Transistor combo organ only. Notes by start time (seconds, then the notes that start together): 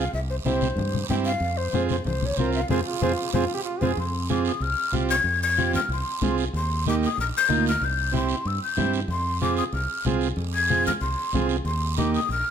0.45 C4 E4 G4
1.10 C4 E4 G4
1.74 C4 F4 G#4
2.39 C4 F4 A#4
2.71 C4 F4 G#4
3.03 C4 F4 G#4
3.35 C4 F4 G#4
3.82 C4 F4 G#4
4.30 C4 F4 G#4
4.93 C4 F4 G4
5.58 C4 F4 G4
6.22 C4 F4 G#4
6.87 A#3 D#4 G4
7.49 A#3 D#4 F4
8.12 C4 E4 G4
8.78 C4 E4 G4
9.42 C4 F4 G#4
10.06 C4 F4 G#4
10.70 C4 F4 G#4
11.34 C4 F4 G#4
11.98 A#3 D#4 G4